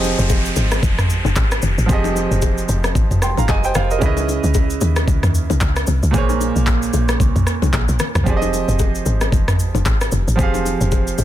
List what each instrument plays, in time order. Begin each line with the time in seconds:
Already playing: log drum bass F1, grand piano F3 C4 G4 G#4 D#5, downlifter
0.03 low bongo, shaker
0.19 log drum bass F1, shaker
0.29 kick, high bongo, shaker
0.45 shaker
0.56 log drum bass G#1, high bongo, shaker
0.71 cross-stick, high bongo, shaker
0.83 log drum bass F1, kick, low conga, shaker
0.98 log drum bass G#1, cross-stick, mid tom, shaker
1.10 shaker
1.25 log drum bass F1, low bongo, shaker
1.36 log drum bass G#1, kick, clap, high bongo, shaker
1.51 cross-stick, shaker
1.62 log drum bass F1, low conga, shaker
1.78 log drum bass G#1, shaker
1.86 log drum bass F1, grand piano F3 C4 G4, kick, low conga, shaker
1.91 grand piano G#4 D#5
2.04 low bongo, shaker
2.16 low bongo, shaker
2.31 log drum bass F1, shaker
2.42 kick, high bongo, shaker
2.58 shaker
2.69 log drum bass F1, high bongo, shaker
2.84 cross-stick, high bongo, shaker
2.95 log drum bass G#1, kick, low conga, shaker
3.11 log drum bass F1, mid tom, shaker
3.22 grand piano G5 C6, cross-stick, shaker
3.37 log drum bass G#1, grand piano F5 A#5, low bongo, shaker
3.48 log drum bass F1, grand piano D#5 G#5, kick, clap, high bongo, shaker
3.64 grand piano C5 G5, shaker
3.75 log drum bass F1, grand piano C5 F5, cross-stick, low conga, shaker
3.91 grand piano A#4 D#5, shaker
3.99 log drum bass C#2, grand piano C#3 C#4 E4, kick, low conga, shaker
4.04 grand piano B4 D#5
4.17 low bongo, shaker
4.28 low bongo, shaker
4.44 log drum bass C#2, shaker
4.54 kick, high bongo, shaker
4.70 shaker
4.81 log drum bass D#2, high bongo, shaker
4.96 cross-stick, high bongo, shaker
5.08 log drum bass C#2, kick, low conga, shaker
5.23 log drum bass D#2, cross-stick, mid tom, shaker
5.35 shaker
5.50 log drum bass C2, low bongo, shaker
5.61 log drum bass C#2, kick, clap, high bongo, shaker
5.76 cross-stick, shaker
5.87 log drum bass C2, low conga, shaker
6.03 log drum bass C#2, shaker
6.11 log drum bass A#1, grand piano A#2 A#3 G#4, kick, low conga, shaker
6.16 grand piano C5 C#5
6.29 low bongo, shaker
6.40 low bongo, shaker
6.56 log drum bass A#1, shaker
6.67 kick, clap, high bongo, shaker
6.82 shaker
6.93 log drum bass A#1, high bongo, shaker
7.09 cross-stick, high bongo, shaker
7.20 log drum bass C2, kick, low conga, shaker
7.36 log drum bass A#1, mid tom, shaker
7.47 cross-stick, shaker
7.62 log drum bass C2, low bongo, shaker
7.73 log drum bass A#1, kick, clap, high bongo, shaker
7.89 log drum bass A#1, shaker
7.99 cross-stick, low conga, shaker
8.15 log drum bass C2, cross-stick, mid tom, shaker
8.23 log drum bass F1, grand piano F3 C4 G4, kick, low conga, shaker
8.29 grand piano G#4 D5
8.37 grand piano D#5
8.42 low bongo, shaker
8.53 low bongo, shaker
8.68 log drum bass F1, shaker
8.79 kick, high bongo, shaker
8.95 shaker
9.06 log drum bass G#1, high bongo, shaker
9.21 cross-stick, high bongo, shaker
9.32 log drum bass F1, kick, low conga, shaker
9.48 log drum bass G#1, cross-stick, mid tom, shaker
9.59 shaker
9.75 log drum bass F1, low bongo, shaker
9.85 log drum bass G#1, kick, clap, high bongo, shaker
10.01 cross-stick, shaker
10.12 log drum bass F1, low conga, shaker
10.28 log drum bass G#1, shaker
10.36 log drum bass F1, grand piano F3 C4 G4, kick, low conga, shaker
10.41 grand piano G#4 F5
10.54 low bongo, shaker
10.65 low bongo, shaker
10.81 log drum bass F1, shaker
10.91 kick, high bongo, shaker
11.07 shaker
11.18 log drum bass F1, high bongo, shaker